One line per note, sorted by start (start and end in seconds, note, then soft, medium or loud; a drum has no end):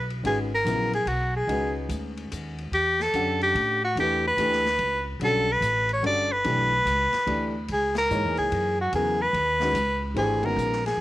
0.00 0.23 B1 medium
0.10 ride soft
0.23 0.64 G#1 medium
0.23 0.48 D#3 medium
0.23 0.49 G#3 soft
0.23 0.49 C#4 soft
0.23 0.49 F#4 soft
0.23 0.38 G#4 medium
0.23 0.49 B4 medium
0.23 ride medium
0.55 0.92 A#4 medium
0.65 1.05 A#1 medium
0.65 0.90 C#3 medium
0.65 0.90 F#3 medium
0.65 0.91 B3 medium
0.65 0.91 E4 medium
0.65 0.91 A#4 medium
0.65 hi-hat pedal soft
0.65 ride medium
0.93 1.10 G#4 medium
0.93 ride soft
1.05 1.47 B1 medium
1.05 1.35 F#4 medium
1.05 ride medium
1.36 1.74 G#4 medium
1.47 1.88 C#2 medium
1.47 2.64 G#3 soft
1.47 2.64 C#4 soft
1.47 2.64 D#4 soft
1.47 2.64 F#4 soft
1.47 2.65 B4 medium
1.47 ride medium
1.89 2.30 D2 medium
1.89 hi-hat pedal soft
1.89 ride soft
2.17 ride soft
2.32 2.71 D#2 medium
2.32 hi-hat pedal soft
2.32 ride medium
2.58 ride soft
2.71 3.12 E2 medium
2.71 3.04 G4 medium
2.71 ride medium
3.00 3.42 A4 medium
3.00 snare soft
3.13 3.54 F#2 medium
3.13 3.78 D3 medium
3.13 3.78 C#4 soft
3.13 3.78 G4 soft
3.13 3.78 A4 medium
3.13 3.78 F#5 soft
3.13 hi-hat pedal soft
3.13 ride soft
3.41 3.81 G4 medium
3.41 ride soft
3.55 3.95 A2 medium
3.55 ride soft
3.84 3.97 F#4 medium
3.96 4.37 E2 medium
3.96 4.22 E3 medium
3.96 4.22 A3 medium
3.96 4.22 D4 soft
3.96 4.22 G4 medium
3.96 4.23 B4 medium
3.96 ride medium
4.00 4.24 G4 medium
4.27 5.05 B4 medium
4.37 4.78 D2 medium
4.37 4.63 E3 medium
4.37 4.63 A3 soft
4.37 4.63 D4 medium
4.37 4.63 G4 medium
4.37 4.63 B4 medium
4.37 hi-hat pedal soft
4.37 ride medium
4.52 snare soft
4.65 snare soft
4.79 5.19 C#2 medium
4.79 ride soft
5.20 5.60 B1 medium
5.20 5.46 D3 medium
5.20 5.46 G3 medium
5.20 5.46 C#4 medium
5.20 5.46 F#4 soft
5.20 5.46 A4 medium
5.20 ride medium
5.24 5.54 A4 medium
5.52 5.92 B4 medium
5.61 6.02 A1 medium
5.61 hi-hat pedal medium
5.61 ride medium
5.89 ride soft
5.93 6.05 C#5 medium
6.02 6.44 G1 medium
6.02 6.27 D3 medium
6.02 6.27 G3 soft
6.02 6.28 C#4 soft
6.02 6.28 F#4 soft
6.02 6.28 A4 medium
6.02 ride soft
6.07 6.34 D5 medium
6.33 7.56 B4 medium
6.44 6.84 B1 medium
6.44 6.69 E3 medium
6.44 6.69 A3 soft
6.44 6.69 D4 soft
6.44 6.70 G4 soft
6.44 6.70 B4 medium
6.44 ride medium
6.85 7.11 C#2 medium
6.85 hi-hat pedal soft
6.85 ride medium
7.13 snare soft
7.13 ride soft
7.26 7.67 D2 medium
7.26 7.51 E3 soft
7.26 7.52 A3 soft
7.26 7.52 D4 soft
7.26 7.52 G4 soft
7.26 7.52 D5 soft
7.26 ride soft
7.68 8.09 C#2 medium
7.68 7.96 G#4 medium
7.68 ride medium
7.95 8.36 A#4 medium
7.95 snare medium
7.95 ride medium
8.10 8.24 G#2 medium
8.10 8.73 E3 medium
8.10 8.73 A#3 soft
8.10 8.74 D#4 soft
8.10 8.74 G#4 medium
8.10 8.74 C#5 medium
8.10 hi-hat pedal soft
8.24 8.37 E2 soft
8.37 8.51 C#2 medium
8.37 8.76 G#4 medium
8.37 ride soft
8.51 8.92 F#2 medium
8.51 ride medium
8.81 8.93 F#4 medium
8.93 9.32 E2 medium
8.93 9.17 C#3 soft
8.93 9.17 F#3 soft
8.93 9.18 B3 soft
8.93 9.18 E4 soft
8.93 9.23 G#4 medium
8.93 9.18 A#4 medium
8.93 ride medium
9.22 10.03 B4 medium
9.33 9.73 D#2 medium
9.33 ride soft
9.60 9.74 D#3 medium
9.60 9.74 G#3 soft
9.60 9.75 C#4 medium
9.60 9.74 F#4 medium
9.60 9.74 B4 medium
9.60 snare soft
9.73 10.14 C#2 medium
9.73 hi-hat pedal medium
9.73 ride medium
10.14 10.55 G#1 medium
10.14 10.40 E3 medium
10.14 10.40 A3 medium
10.14 10.40 D4 medium
10.14 10.41 G4 medium
10.14 10.47 G#4 medium
10.14 10.41 C5 medium
10.14 ride medium
10.42 10.79 D#3 medium
10.42 10.79 G#3 soft
10.42 10.79 B3 medium
10.42 10.79 C#4 soft
10.42 10.79 F#4 soft
10.42 10.85 A#4 medium
10.42 kick medium
10.42 ride medium
10.56 10.97 A#1 medium
10.56 hi-hat pedal medium
10.72 snare soft
10.86 11.01 G#4 medium
10.86 snare soft
10.86 ride soft
10.97 11.01 B1 medium